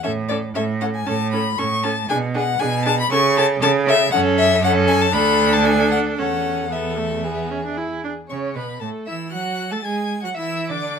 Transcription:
0.03 0.50 A2 medium
0.03 0.11 C#4 medium
0.03 0.11 A4 medium
0.03 0.12 E5 medium
0.29 0.38 C#4 medium
0.29 0.38 A4 medium
0.29 0.37 D5 medium
0.54 1.01 A2 medium
0.54 0.62 C#4 medium
0.54 0.64 A4 medium
0.54 0.63 E5 medium
0.81 0.89 C#4 medium
0.81 0.89 A4 medium
0.81 0.86 F#5 loud
0.95 1.08 G#5 medium
1.06 1.52 A2 medium
1.06 1.14 C#4 medium
1.06 1.16 A4 medium
1.06 1.31 A5 loud
1.32 1.40 C#4 medium
1.32 1.41 A4 medium
1.32 1.59 B5 medium
1.58 2.04 A2 medium
1.58 1.66 C#4 medium
1.58 1.66 A4 medium
1.58 1.85 C#6 loud
1.83 1.92 C#4 medium
1.83 1.91 A4 medium
1.83 2.09 A5 loud
2.08 2.55 B2 medium
2.08 2.18 D4 medium
2.08 2.16 G#4 medium
2.08 2.17 G#5 loud
2.34 2.43 D4 medium
2.34 2.42 G#4 medium
2.34 2.61 F#5 loud
2.59 3.05 B2 loud
2.59 2.68 D4 medium
2.59 2.67 G#4 medium
2.59 2.84 G#5 loud
2.85 2.93 D4 medium
2.85 2.93 G#4 medium
2.85 2.98 A5 loud
3.00 3.12 B5 loud
3.11 3.56 C#3 loud
3.11 3.19 C#4 medium
3.11 3.19 A4 medium
3.11 3.37 C#6 loud
3.36 3.45 C#4 medium
3.36 3.44 A4 medium
3.36 3.46 A5 loud
3.60 4.07 C#3 loud
3.60 3.69 C#4 medium
3.60 3.69 A4 medium
3.60 3.70 A5 loud
3.86 3.94 C#4 medium
3.86 3.95 A4 medium
3.86 4.11 E5 loud
4.11 5.15 F#2 loud
4.11 4.59 C#4 loud
4.11 4.60 A4 medium
4.11 4.20 F#5 loud
4.38 4.63 E5 loud
4.62 5.12 C#4 loud
4.62 5.12 A4 loud
4.62 4.72 F#5 loud
4.87 5.03 G#5 loud
5.01 5.14 A5 loud
5.12 6.20 D2 loud
5.12 6.20 D4 loud
5.12 6.15 A4 medium
5.12 5.54 B5 loud
5.52 5.66 A5 loud
5.65 5.90 G#5 loud
5.91 5.99 F#5 loud
6.17 8.10 E2 medium
6.17 6.70 C#4 medium
6.17 6.69 A4 medium
6.17 6.73 F#5 medium
6.69 7.00 B3 medium
6.69 7.25 A4 medium
6.69 7.77 E5 medium
6.98 7.26 A3 medium
7.23 7.52 B3 medium
7.23 8.09 G#4 medium
7.50 7.64 C#4 medium
7.65 7.79 D4 medium
7.77 8.04 E4 medium
8.04 8.12 D4 medium
8.29 8.57 C#3 medium
8.29 8.54 C#4 medium
8.29 8.57 C#5 medium
8.29 8.38 C#6 medium
8.55 8.81 B2 medium
8.55 8.64 B3 soft
8.55 8.82 B4 medium
8.55 8.80 B5 medium
8.81 8.89 A2 medium
8.81 9.09 A3 soft
8.81 9.06 A4 medium
8.81 8.89 A5 medium
9.06 9.35 E3 medium
9.06 9.32 E4 soft
9.06 9.14 E5 medium
9.06 9.32 E6 medium
9.32 9.73 F#3 medium
9.32 9.73 F#4 medium
9.32 9.72 F#5 medium
9.32 9.74 F#6 medium
9.71 9.84 A3 medium
9.71 9.84 A4 medium
9.71 9.83 A5 medium
9.71 9.86 A6 medium
9.84 10.25 G#3 medium
9.84 10.22 G#4 medium
9.84 10.22 G#5 medium
9.84 10.24 G#6 medium
10.22 10.36 F#3 medium
10.22 10.28 F#4 medium
10.22 10.36 F#5 medium
10.22 10.30 F#6 medium
10.34 10.72 E3 medium
10.34 10.72 E4 medium
10.34 10.70 E5 medium
10.34 10.69 E6 medium
10.69 10.99 D3 medium
10.69 10.99 D4 medium
10.69 10.99 D5 medium
10.69 10.99 D6 medium

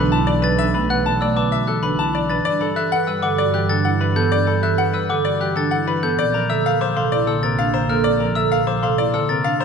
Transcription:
0.00 2.35 B1 loud
0.00 0.17 D3 medium
0.00 0.17 D4 loud
0.00 0.17 B4 medium
0.00 0.17 B5 medium
0.12 0.32 E4 medium
0.12 0.32 A5 loud
0.27 0.48 E3 medium
0.27 0.48 D5 medium
0.27 0.48 B5 medium
0.42 0.63 D4 medium
0.42 0.63 B4 medium
0.42 0.63 B4 loud
0.42 0.64 A6 loud
0.58 0.79 D4 medium
0.58 0.79 E5 loud
0.74 0.95 A3 medium
0.74 0.94 B4 medium
0.74 0.95 B5 medium
0.90 1.10 E3 medium
0.90 1.10 B4 loud
0.90 1.10 F#5 medium
0.90 1.10 F#6 loud
1.05 1.25 D5 medium
1.05 1.26 A5 loud
1.21 1.41 A3 medium
1.21 1.41 D5 medium
1.21 1.41 E6 medium
1.36 1.57 D3 medium
1.36 1.56 B4 medium
1.36 1.57 A5 medium
1.36 1.57 D6 medium
1.51 1.72 F#4 medium
1.51 1.72 E5 medium
1.67 1.88 E3 medium
1.67 1.88 A4 medium
1.67 1.88 F#6 medium
1.83 2.03 D3 medium
1.83 2.03 D4 medium
1.83 2.03 B4 medium
1.83 2.03 B5 medium
1.98 2.19 E4 medium
1.98 2.19 A5 medium
2.14 2.34 E3 medium
2.14 2.35 D5 medium
2.14 2.34 B5 medium
2.29 2.50 D4 medium
2.29 2.50 B4 medium
2.29 2.50 A6 medium
2.45 6.08 G2 medium
2.45 2.65 D4 medium
2.45 2.65 D5 loud
2.61 2.81 G3 medium
2.61 2.81 A4 medium
2.61 2.81 B5 medium
2.76 2.96 E3 medium
2.76 2.96 A4 loud
2.76 2.96 E5 medium
2.76 2.96 F#6 loud
2.92 3.12 B4 medium
2.92 3.12 F#5 loud
3.07 3.28 G3 medium
3.07 3.28 B4 medium
3.07 3.28 E6 medium
3.22 3.43 D3 medium
3.22 3.43 A4 loud
3.22 3.43 F#5 medium
3.22 3.43 D6 medium
3.38 3.59 F#4 medium
3.38 3.59 D5 medium
3.54 3.74 E3 medium
3.54 3.74 G4 medium
3.54 3.74 F#6 medium
3.69 3.90 D3 medium
3.69 3.90 D4 medium
3.69 3.90 A4 medium
3.69 3.90 A6 loud
3.85 4.05 E4 medium
3.85 4.05 F#5 medium
4.01 4.21 E3 medium
4.01 4.21 B4 medium
4.01 4.21 B5 medium
4.16 4.36 B3 medium
4.16 4.36 A4 medium
4.16 4.36 G6 loud
4.32 4.52 D4 medium
4.32 4.52 D5 loud
4.47 4.68 G3 medium
4.47 4.67 A4 medium
4.47 4.68 B5 medium
4.63 4.83 E3 medium
4.63 4.83 A4 loud
4.63 4.83 E5 medium
4.63 4.83 F#6 loud
4.78 4.99 B4 medium
4.78 4.98 F#5 loud
4.93 5.14 G3 medium
4.93 5.14 B4 medium
4.93 5.14 E6 medium
5.09 5.30 D3 medium
5.09 5.30 A4 medium
5.09 5.30 F#5 medium
5.09 5.30 D6 medium
5.25 5.45 F#4 medium
5.25 5.45 D5 medium
5.40 5.61 E3 medium
5.40 5.61 G4 medium
5.40 5.61 F#6 medium
5.56 5.76 D3 medium
5.56 5.76 D4 loud
5.56 5.76 A4 medium
5.56 5.77 A6 medium
5.71 5.92 E4 medium
5.71 5.92 F#5 medium
5.87 6.07 E3 medium
5.87 6.07 B4 medium
5.87 6.08 B5 medium
6.03 6.23 B3 medium
6.03 6.23 A4 medium
6.03 6.23 A4 loud
6.03 6.23 G6 loud
6.19 9.65 A#1 medium
6.19 6.39 C4 medium
6.19 6.39 D5 loud
6.34 6.54 F3 medium
6.34 6.54 A#4 medium
6.34 6.54 A#5 medium
6.49 6.69 D3 medium
6.49 6.70 A4 loud
6.49 6.70 E5 medium
6.49 6.70 E6 medium
6.65 6.85 A#4 medium
6.65 6.85 F5 loud
6.81 7.01 F3 medium
6.81 7.01 C5 medium
6.81 7.01 D6 medium
6.96 7.16 C3 medium
6.96 7.16 A4 loud
6.96 7.16 F5 medium
6.96 7.16 C6 medium
7.12 7.32 E4 medium
7.12 7.32 D5 medium
7.27 7.47 D3 medium
7.27 7.47 A4 medium
7.27 7.47 E6 medium
7.42 7.63 C3 medium
7.42 7.63 C4 loud
7.42 7.63 A#4 medium
7.42 7.63 A6 medium
7.58 7.78 D4 medium
7.58 7.78 F5 loud
7.74 7.94 D3 medium
7.74 7.94 C5 medium
7.74 7.94 A#5 medium
7.89 8.10 A#3 medium
7.89 8.09 A4 loud
7.89 8.10 A#4 medium
7.89 8.10 F6 loud
8.04 8.25 C4 medium
8.04 8.25 D5 loud
8.20 8.41 F3 medium
8.20 8.40 A#4 medium
8.20 8.41 A#5 medium
8.35 8.56 D3 medium
8.35 8.56 A4 loud
8.35 8.56 E5 medium
8.35 8.56 E6 loud
8.51 8.72 A#4 medium
8.51 8.72 F5 loud
8.67 8.87 F3 medium
8.67 8.87 C5 medium
8.67 8.87 D6 medium
8.82 9.03 C3 medium
8.82 9.03 A4 medium
8.82 9.03 F5 medium
8.82 9.03 C6 medium
8.98 9.18 E4 medium
8.98 9.18 D5 medium
9.14 9.34 D3 medium
9.14 9.34 A4 medium
9.14 9.34 E6 medium
9.29 9.50 C3 medium
9.29 9.49 C4 medium
9.29 9.49 A#4 medium
9.29 9.49 A6 loud
9.44 9.65 D4 medium
9.44 9.65 F5 loud
9.60 9.65 D3 medium
9.60 9.65 C5 medium
9.60 9.65 A#5 medium

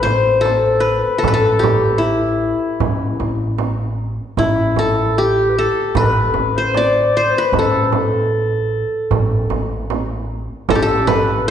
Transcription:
0.00 0.40 A4 medium
0.00 0.86 C5 medium
0.00 0.46 C5 medium
0.05 1.01 A1 medium
0.05 frame drum medium
0.41 1.18 A4 medium
0.41 0.86 A4 medium
0.45 frame drum medium
0.80 1.27 B4 medium
0.80 1.26 B4 medium
1.18 1.33 A4 medium
1.23 2.52 A1 medium
1.23 1.36 A4 medium
1.23 frame drum loud
1.28 2.37 B4 medium
1.34 2.51 A4 medium
1.34 2.03 A4 medium
1.59 2.85 G4 medium
1.63 frame drum medium
1.98 3.54 E4 medium
1.98 3.59 E4 medium
2.80 3.13 A1 medium
2.80 frame drum medium
3.20 4.16 A1 medium
3.20 frame drum medium
3.58 frame drum medium
4.37 5.66 A1 medium
4.37 5.78 E4 medium
4.37 4.79 E4 medium
4.37 frame drum medium
4.76 5.16 A4 medium
4.76 5.58 A4 medium
4.76 frame drum medium
5.17 5.51 G4 medium
5.17 6.44 G4 medium
5.49 5.59 B4 medium
5.57 5.98 A4 medium
5.57 6.76 A4 medium
5.95 6.27 A1 medium
5.95 6.58 B4 medium
5.95 6.64 B4 medium
5.95 frame drum medium
6.34 7.31 A1 medium
6.34 frame drum medium
6.57 6.77 C5 medium
6.57 7.16 C5 medium
6.74 7.32 D5 medium
6.74 7.76 D5 medium
6.74 frame drum medium
7.17 7.44 C5 medium
7.30 7.36 C5 soft
7.34 7.54 B4 medium
7.34 8.47 B4 medium
7.52 8.81 A1 medium
7.52 9.87 A4 medium
7.52 frame drum medium
7.59 9.89 A4 medium
7.92 frame drum medium
9.11 9.43 A1 medium
9.11 frame drum medium
9.50 10.46 A1 medium
9.50 frame drum medium
9.90 frame drum medium
10.69 11.51 A1 medium
10.69 10.82 A4 medium
10.69 frame drum loud
10.75 11.51 G4 medium
10.82 11.51 A4 medium
10.82 11.07 A4 medium
11.07 11.51 B4 medium
11.07 11.17 B4 medium
11.07 frame drum medium
11.15 11.25 A4 medium
11.23 11.48 B4 medium

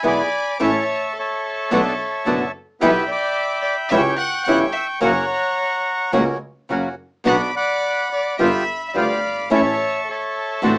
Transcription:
0.03 0.27 B1 medium
0.03 0.20 B2 medium
0.03 0.20 E3 medium
0.03 0.21 G#3 medium
0.03 0.21 B3 medium
0.03 0.27 B3 medium
0.03 0.21 E4 medium
0.03 0.28 E4 medium
0.03 0.28 G#4 medium
0.03 0.57 D5 medium
0.07 0.58 G#5 medium
0.07 0.58 B5 medium
0.07 0.63 D6 loud
0.60 0.83 A1 loud
0.60 0.68 E3 medium
0.60 0.69 A3 loud
0.60 0.83 C#4 medium
0.60 0.69 C#4 medium
0.60 0.69 E4 loud
0.60 0.84 E4 medium
0.60 0.84 A4 medium
0.60 1.12 C#5 medium
0.60 1.18 E5 medium
0.60 1.19 A5 medium
0.60 1.13 C#6 loud
1.16 2.50 A4 medium
1.16 2.51 C#5 medium
1.16 2.52 E5 medium
1.20 2.52 A5 medium
1.70 1.95 B1 loud
1.70 1.80 B2 medium
1.70 1.80 D3 medium
1.70 1.80 A3 medium
1.70 1.94 B3 medium
1.70 1.80 B3 loud
1.70 1.94 D4 medium
1.70 1.81 F#4 loud
1.70 1.94 A4 medium
2.26 2.49 F#1 medium
2.26 2.42 B2 medium
2.26 2.43 D3 medium
2.26 2.43 A3 medium
2.26 2.49 B3 medium
2.26 2.43 B3 medium
2.26 2.49 D4 medium
2.26 2.43 F#4 medium
2.26 2.49 A4 medium
2.80 3.05 B1 loud
2.80 2.90 B2 loud
2.80 2.90 E3 loud
2.80 2.90 G3 loud
2.80 3.04 B3 medium
2.80 2.90 B3 loud
2.80 3.04 E4 medium
2.80 2.91 E4 loud
2.80 3.04 G4 loud
2.80 3.07 B4 medium
2.80 3.89 E5 medium
2.80 3.10 G5 medium
2.80 3.08 B5 loud
3.09 3.60 D5 medium
3.09 3.89 G5 medium
3.09 3.89 B5 medium
3.09 3.61 D6 loud
3.61 3.75 D5 medium
3.61 3.77 D6 loud
3.89 4.15 C#2 loud
3.89 4.00 C#3 medium
3.89 4.00 E3 loud
3.89 4.00 G3 loud
3.89 4.15 C#4 medium
3.89 4.00 C#4 loud
3.89 4.15 E4 medium
3.89 4.01 E4 loud
3.89 4.15 G4 loud
3.89 4.02 E5 medium
3.89 4.04 E6 loud
3.94 5.00 G5 medium
3.94 5.00 C#6 medium
4.17 4.44 F#5 loud
4.17 4.44 F#6 loud
4.44 4.70 G1 medium
4.44 4.64 C#3 medium
4.44 4.64 E3 medium
4.44 4.64 G3 medium
4.44 4.71 C#4 medium
4.44 4.71 E4 medium
4.44 4.71 G4 medium
4.44 4.57 F#5 medium
4.44 4.59 F#6 loud
4.49 4.65 C#4 medium
4.49 4.65 E4 medium
4.72 4.85 E5 medium
4.72 4.87 E6 loud
5.01 5.26 F#1 loud
5.01 5.10 C#3 medium
5.01 5.11 F#3 medium
5.01 5.11 A#3 loud
5.01 5.25 A#3 medium
5.01 5.25 C#4 medium
5.01 5.11 C#4 loud
5.01 5.25 F#4 loud
5.01 5.11 F#4 loud
5.01 6.10 C#5 medium
5.01 6.11 C#6 loud
5.05 6.12 F#5 medium
5.05 6.12 A#5 medium
6.12 6.37 C#2 loud
6.12 6.22 C#3 medium
6.12 6.23 F#3 medium
6.12 6.23 A#3 medium
6.12 6.37 A#3 medium
6.12 6.23 C#4 loud
6.12 6.38 C#4 medium
6.12 6.23 F#4 loud
6.12 6.38 F#4 medium
6.69 6.95 F#1 medium
6.69 6.87 C#3 medium
6.69 6.88 F#3 medium
6.69 6.88 A#3 medium
6.69 6.95 A#3 medium
6.69 6.88 C#4 medium
6.69 6.95 C#4 medium
6.69 6.88 F#4 medium
6.69 6.95 F#4 medium
7.24 7.51 B1 medium
7.24 7.35 B2 medium
7.24 7.35 F#3 medium
7.24 7.35 B3 medium
7.24 7.51 B3 medium
7.24 7.36 D4 loud
7.24 7.51 D4 medium
7.24 7.36 F#4 medium
7.24 7.51 F#4 medium
7.24 7.40 F#5 medium
7.29 7.55 B5 medium
7.29 7.55 D6 medium
7.29 7.42 F#6 loud
7.56 8.08 D5 medium
7.56 8.37 F#5 medium
7.56 8.37 B5 medium
7.56 8.09 D6 loud
8.12 8.38 D5 medium
8.12 8.42 D6 medium
8.39 8.64 G1 loud
8.39 8.49 G3 medium
8.39 8.63 B3 medium
8.39 8.49 B3 medium
8.39 8.64 F4 medium
8.39 8.49 F4 loud
8.39 8.64 G4 medium
8.39 8.86 E5 medium
8.39 8.96 B5 medium
8.39 8.89 E6 loud
8.88 8.95 E5 medium
8.88 8.97 E6 medium
8.94 9.20 D2 medium
8.94 9.12 G3 medium
8.94 9.13 B3 medium
8.94 9.20 B3 medium
8.94 9.13 F4 medium
8.94 9.20 F4 medium
8.94 9.20 G4 medium
8.94 9.48 D5 medium
8.94 9.49 F5 medium
8.94 9.49 B5 medium
8.94 9.49 D6 loud
9.25 9.52 G1 medium
9.50 9.76 A1 medium
9.50 9.60 E3 medium
9.50 9.60 A3 loud
9.50 9.61 C#4 loud
9.50 9.75 C#4 medium
9.50 9.61 E4 loud
9.50 9.75 E4 medium
9.50 9.76 A4 medium
9.50 10.04 C#5 medium
9.55 10.09 E5 medium
9.55 10.09 A5 medium
9.55 10.11 C#6 loud
10.09 10.78 A4 medium
10.09 10.61 C#5 medium
10.09 10.78 E5 medium
10.09 10.78 A5 medium
10.62 10.78 A1 loud
10.62 10.71 D3 medium
10.62 10.72 A3 loud
10.62 10.78 C4 medium
10.62 10.72 C4 loud
10.62 10.78 D4 medium
10.62 10.72 F#4 loud
10.62 10.78 F#4 loud

